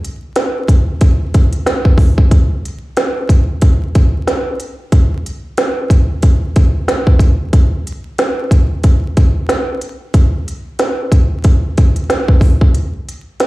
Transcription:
0.05 closed hi-hat medium
0.36 snare loud
0.36 closed hi-hat medium
0.68 kick medium
0.68 closed hi-hat medium
1.01 kick medium
1.01 closed hi-hat loud
1.34 kick medium
1.34 closed hi-hat medium
1.53 closed hi-hat medium
1.66 snare loud
1.66 closed hi-hat medium
1.85 kick medium
1.98 kick medium
1.98 open hi-hat medium
2.18 kick medium
2.31 kick loud
2.31 closed hi-hat medium
2.65 closed hi-hat medium
2.97 snare loud
2.97 closed hi-hat medium
3.29 kick medium
3.29 closed hi-hat medium
3.62 kick medium
3.62 closed hi-hat loud
3.95 kick loud
3.95 closed hi-hat medium
4.27 snare loud
4.27 closed hi-hat medium
4.60 closed hi-hat medium
4.92 kick loud
4.92 closed hi-hat loud
5.26 closed hi-hat medium
5.58 snare loud
5.58 closed hi-hat medium
5.90 kick medium
5.90 closed hi-hat medium
6.22 kick medium
6.22 closed hi-hat loud
6.56 kick loud
6.56 closed hi-hat medium
6.88 snare loud
6.88 closed hi-hat medium
7.07 kick medium
7.19 kick medium
7.19 closed hi-hat medium
7.53 kick loud
7.53 closed hi-hat medium
7.87 closed hi-hat medium
8.18 snare loud
8.18 closed hi-hat loud
8.51 kick medium
8.51 closed hi-hat medium
8.84 kick medium
8.84 closed hi-hat loud
9.17 kick loud
9.17 closed hi-hat medium
9.49 snare loud
9.49 closed hi-hat medium
9.81 closed hi-hat medium
10.14 kick loud
10.14 closed hi-hat loud
10.48 closed hi-hat medium
10.79 snare loud
10.79 closed hi-hat medium
11.12 kick medium
11.12 closed hi-hat medium
11.44 kick medium
11.44 closed hi-hat loud
11.77 kick loud
11.77 closed hi-hat medium
11.96 closed hi-hat medium
12.10 snare loud
12.10 closed hi-hat medium
12.28 kick medium
12.41 kick medium
12.41 open hi-hat medium
12.61 kick loud
12.75 closed hi-hat loud
13.09 closed hi-hat medium
13.40 snare loud
13.40 closed hi-hat medium

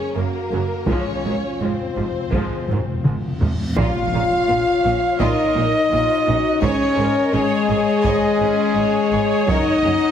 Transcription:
0.00 0.16 C#4 medium
0.00 0.16 G#4 medium
0.00 0.16 C#5 medium
0.15 0.24 F#1 soft
0.15 0.23 F#2 soft
0.15 0.24 C#3 soft
0.15 0.24 A#3 soft
0.15 0.89 A#3 medium
0.15 0.87 F#4 medium
0.15 0.87 A#4 medium
0.52 0.60 F#1 soft
0.52 0.60 F#2 soft
0.52 0.60 C#3 soft
0.52 0.61 F#3 soft
0.87 0.95 G#1 medium
0.87 0.96 G#2 medium
0.87 1.22 F3 soft
0.87 1.22 G#3 soft
0.87 1.60 C#4 medium
0.87 3.42 F4 soft
0.87 1.60 C#5 medium
0.87 taiko medium
0.87 reverse cymbal soft
1.03 1.10 F2 soft
1.11 1.17 F2 soft
1.18 1.25 F2 soft
1.24 1.32 G#1 soft
1.24 1.33 F2 soft
1.24 1.32 G#2 soft
1.24 1.33 D#3 soft
1.24 1.33 F#3 soft
1.34 1.40 F2 soft
1.42 1.48 F2 soft
1.49 1.56 F2 soft
1.58 1.68 G#1 soft
1.58 1.64 F2 soft
1.58 1.69 G#2 soft
1.58 1.70 F3 soft
1.58 1.70 G#3 soft
1.58 3.06 C4 soft
1.58 3.06 C5 soft
1.65 1.71 F2 soft
1.72 1.79 F2 soft
1.80 1.86 F2 soft
1.88 1.94 F2 soft
1.95 2.04 G#1 soft
1.95 2.01 F2 soft
1.95 2.05 G#2 soft
1.95 2.05 C3 soft
1.95 2.05 F3 soft
2.02 2.10 F2 soft
2.11 2.17 F2 soft
2.18 2.25 F2 soft
2.26 2.32 F2 soft
2.32 2.40 G#1 soft
2.32 2.40 F2 soft
2.32 2.42 G#2 soft
2.32 2.67 F3 soft
2.32 2.66 G#3 soft
2.32 taiko medium
2.41 2.47 F2 soft
2.48 2.55 F2 soft
2.56 2.62 F2 soft
2.64 2.70 F2 soft
2.68 2.76 G#1 soft
2.68 2.77 F2 soft
2.68 2.78 G#2 soft
2.68 2.77 D#3 soft
2.68 2.77 F#3 soft
2.68 taiko low-mid medium
2.78 2.85 F2 soft
2.86 2.93 F2 soft
2.94 3.00 F2 medium
3.02 3.13 G#1 soft
3.02 3.08 F2 medium
3.02 3.13 F3 soft
3.02 3.13 G#3 soft
3.02 taiko mid medium
3.06 3.16 F2 medium
3.06 3.14 G#2 soft
3.17 3.23 F2 medium
3.25 3.31 F2 medium
3.32 3.39 F2 medium
3.40 3.49 G#1 soft
3.40 3.45 F2 medium
3.40 3.50 G#2 soft
3.40 3.49 C3 soft
3.40 3.50 F3 soft
3.40 taiko low medium
3.47 3.53 F2 medium
3.55 3.60 F2 medium
3.62 3.68 F2 medium
3.69 3.76 F2 medium
3.76 3.85 A#1 medium
3.76 3.85 A#2 medium
3.76 4.81 A#2 medium
3.76 5.17 F4 medium
3.76 4.11 F4 medium
3.76 6.59 C#5 medium
3.76 5.22 F5 medium
3.76 5.21 F5 medium
3.76 5.17 F5 medium
3.76 taiko medium
3.76 impact medium
4.13 4.21 A#1 medium
4.13 4.21 A#2 medium
4.13 4.21 D#4 soft
4.48 4.57 A#1 medium
4.48 4.56 A#2 medium
4.48 4.58 F4 soft
4.85 4.93 A#1 soft
4.85 4.93 A#2 soft
4.85 4.94 C#4 medium
5.20 5.28 A#1 medium
5.20 5.28 A#2 medium
5.20 6.61 D#4 medium
5.20 5.54 F4 medium
5.20 5.88 A#4 medium
5.20 6.62 D#5 loud
5.20 6.60 D#5 medium
5.20 taiko medium
5.56 5.64 A#1 medium
5.56 5.64 A#2 medium
5.56 5.64 D#4 medium
5.92 6.00 A#1 medium
5.92 6.00 A#2 soft
5.92 6.27 F4 medium
5.92 6.00 F4 medium
6.27 6.35 A#1 medium
6.27 6.35 A#2 medium
6.27 6.35 C#4 medium
6.27 6.63 F#4 medium
6.62 6.70 G#1 medium
6.62 6.70 G#2 medium
6.62 7.33 C#4 loud
6.62 6.99 G#4 medium
6.62 6.96 C#5 medium
6.62 7.33 C#5 medium
6.62 9.44 D#5 medium
6.62 taiko medium
6.97 7.06 G#1 medium
6.97 7.06 G#2 medium
6.97 7.34 A#4 medium
6.97 7.05 C5 medium
7.33 7.42 G#1 medium
7.33 7.41 G#2 medium
7.33 9.44 G#3 loud
7.33 9.45 G#4 medium
7.33 9.51 G#4 medium
7.33 7.41 C#5 medium
7.33 7.68 C#5 medium
7.67 7.78 G#1 medium
7.67 7.77 G#2 medium
7.67 7.75 G#4 medium
7.67 8.05 C#5 medium
8.04 8.13 G#1 medium
8.04 8.12 G#2 medium
8.04 8.38 C#5 medium
8.04 8.41 D#5 medium
8.04 taiko medium
8.40 8.49 G#1 medium
8.40 8.48 G#2 medium
8.40 8.76 C#4 medium
8.40 8.48 C5 medium
8.75 8.84 G#1 medium
8.75 8.83 G#2 medium
8.75 8.85 C#5 medium
8.75 10.11 C#5 medium
9.12 9.20 G#1 medium
9.12 9.21 G#2 medium
9.12 9.20 G#4 medium
9.47 9.56 F#1 medium
9.47 9.56 F#2 medium
9.47 10.11 D#4 loud
9.47 9.82 A#4 medium
9.47 10.11 D#5 loud
9.47 10.11 F#5 medium
9.47 taiko loud
9.84 9.92 F#1 medium
9.84 9.92 F#2 medium
9.84 9.92 G#4 medium

